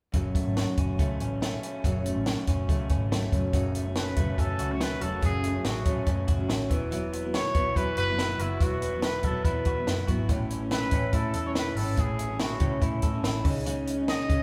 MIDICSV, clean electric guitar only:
0, 0, Header, 1, 2, 480
1, 0, Start_track
1, 0, Key_signature, 3, "minor"
1, 0, Tempo, 422833
1, 158, Time_signature, 4, 2, 24, 8
1, 16380, End_track
2, 0, Start_track
2, 0, Title_t, "Clean electric guitar"
2, 0, Program_c, 0, 27
2, 157, Note_on_c, 0, 42, 73
2, 409, Note_on_c, 0, 57, 43
2, 642, Note_on_c, 0, 66, 60
2, 893, Note_on_c, 0, 61, 53
2, 1131, Note_off_c, 0, 57, 0
2, 1135, Note_on_c, 0, 57, 55
2, 1369, Note_off_c, 0, 61, 0
2, 1374, Note_on_c, 0, 61, 53
2, 1614, Note_off_c, 0, 57, 0
2, 1619, Note_on_c, 0, 57, 50
2, 1850, Note_off_c, 0, 61, 0
2, 1855, Note_on_c, 0, 61, 53
2, 2085, Note_off_c, 0, 42, 0
2, 2100, Note_on_c, 0, 42, 70
2, 2333, Note_off_c, 0, 57, 0
2, 2337, Note_on_c, 0, 57, 48
2, 2570, Note_off_c, 0, 66, 0
2, 2574, Note_on_c, 0, 66, 59
2, 2816, Note_off_c, 0, 61, 0
2, 2820, Note_on_c, 0, 61, 55
2, 3053, Note_off_c, 0, 57, 0
2, 3058, Note_on_c, 0, 57, 57
2, 3293, Note_off_c, 0, 61, 0
2, 3298, Note_on_c, 0, 61, 48
2, 3531, Note_off_c, 0, 57, 0
2, 3536, Note_on_c, 0, 57, 52
2, 3765, Note_off_c, 0, 42, 0
2, 3778, Note_on_c, 0, 42, 65
2, 3995, Note_off_c, 0, 42, 0
2, 4009, Note_on_c, 0, 42, 68
2, 4252, Note_off_c, 0, 57, 0
2, 4257, Note_on_c, 0, 57, 44
2, 4495, Note_off_c, 0, 61, 0
2, 4500, Note_on_c, 0, 61, 49
2, 4718, Note_off_c, 0, 57, 0
2, 4732, Note_on_c, 0, 57, 57
2, 4959, Note_off_c, 0, 61, 0
2, 4972, Note_on_c, 0, 61, 58
2, 5210, Note_off_c, 0, 66, 0
2, 5214, Note_on_c, 0, 66, 54
2, 5444, Note_off_c, 0, 61, 0
2, 5457, Note_on_c, 0, 61, 55
2, 5683, Note_off_c, 0, 66, 0
2, 5687, Note_on_c, 0, 66, 62
2, 5917, Note_off_c, 0, 42, 0
2, 5931, Note_on_c, 0, 42, 70
2, 6157, Note_off_c, 0, 57, 0
2, 6171, Note_on_c, 0, 57, 51
2, 6392, Note_off_c, 0, 61, 0
2, 6405, Note_on_c, 0, 61, 57
2, 6634, Note_off_c, 0, 57, 0
2, 6648, Note_on_c, 0, 57, 59
2, 6874, Note_off_c, 0, 61, 0
2, 6888, Note_on_c, 0, 61, 57
2, 7118, Note_off_c, 0, 66, 0
2, 7122, Note_on_c, 0, 66, 57
2, 7350, Note_off_c, 0, 61, 0
2, 7364, Note_on_c, 0, 61, 55
2, 7601, Note_on_c, 0, 52, 70
2, 7652, Note_off_c, 0, 61, 0
2, 7654, Note_off_c, 0, 57, 0
2, 7655, Note_off_c, 0, 42, 0
2, 7838, Note_off_c, 0, 52, 0
2, 7842, Note_on_c, 0, 52, 76
2, 7876, Note_off_c, 0, 66, 0
2, 8089, Note_on_c, 0, 59, 48
2, 8330, Note_on_c, 0, 64, 50
2, 8551, Note_off_c, 0, 59, 0
2, 8564, Note_on_c, 0, 59, 57
2, 8805, Note_off_c, 0, 64, 0
2, 8809, Note_on_c, 0, 64, 59
2, 9050, Note_on_c, 0, 66, 58
2, 9290, Note_off_c, 0, 64, 0
2, 9295, Note_on_c, 0, 64, 55
2, 9516, Note_off_c, 0, 66, 0
2, 9529, Note_on_c, 0, 66, 58
2, 9763, Note_off_c, 0, 52, 0
2, 9768, Note_on_c, 0, 52, 66
2, 9995, Note_off_c, 0, 59, 0
2, 10008, Note_on_c, 0, 59, 46
2, 10246, Note_off_c, 0, 64, 0
2, 10251, Note_on_c, 0, 64, 53
2, 10473, Note_off_c, 0, 59, 0
2, 10487, Note_on_c, 0, 59, 55
2, 10726, Note_off_c, 0, 64, 0
2, 10731, Note_on_c, 0, 64, 52
2, 10959, Note_off_c, 0, 66, 0
2, 10973, Note_on_c, 0, 66, 54
2, 11205, Note_off_c, 0, 64, 0
2, 11210, Note_on_c, 0, 64, 47
2, 11422, Note_off_c, 0, 66, 0
2, 11436, Note_on_c, 0, 66, 61
2, 11679, Note_on_c, 0, 45, 72
2, 11726, Note_off_c, 0, 66, 0
2, 11731, Note_off_c, 0, 59, 0
2, 11925, Note_on_c, 0, 61, 52
2, 12151, Note_off_c, 0, 64, 0
2, 12156, Note_on_c, 0, 64, 51
2, 12395, Note_off_c, 0, 61, 0
2, 12400, Note_on_c, 0, 61, 56
2, 12621, Note_off_c, 0, 64, 0
2, 12635, Note_on_c, 0, 64, 53
2, 12875, Note_on_c, 0, 69, 53
2, 13100, Note_off_c, 0, 64, 0
2, 13113, Note_on_c, 0, 64, 52
2, 13357, Note_off_c, 0, 69, 0
2, 13576, Note_off_c, 0, 45, 0
2, 13589, Note_on_c, 0, 45, 75
2, 13741, Note_off_c, 0, 52, 0
2, 13829, Note_off_c, 0, 61, 0
2, 13834, Note_on_c, 0, 61, 53
2, 14060, Note_off_c, 0, 64, 0
2, 14074, Note_on_c, 0, 64, 53
2, 14308, Note_off_c, 0, 61, 0
2, 14313, Note_on_c, 0, 61, 55
2, 14537, Note_off_c, 0, 64, 0
2, 14550, Note_on_c, 0, 64, 55
2, 14788, Note_on_c, 0, 69, 55
2, 15013, Note_off_c, 0, 64, 0
2, 15027, Note_on_c, 0, 64, 55
2, 15260, Note_on_c, 0, 49, 71
2, 15319, Note_off_c, 0, 45, 0
2, 15319, Note_off_c, 0, 64, 0
2, 15320, Note_off_c, 0, 69, 0
2, 15491, Note_off_c, 0, 49, 0
2, 15504, Note_on_c, 0, 49, 73
2, 15730, Note_off_c, 0, 61, 0
2, 15734, Note_on_c, 0, 61, 50
2, 15972, Note_off_c, 0, 61, 0
2, 15985, Note_on_c, 0, 61, 61
2, 16103, Note_off_c, 0, 61, 0
2, 16103, Note_on_c, 0, 63, 49
2, 16221, Note_on_c, 0, 61, 59
2, 16380, Note_off_c, 0, 49, 0
2, 16380, Note_off_c, 0, 61, 0
2, 16380, Note_off_c, 0, 63, 0
2, 16380, End_track
0, 0, End_of_file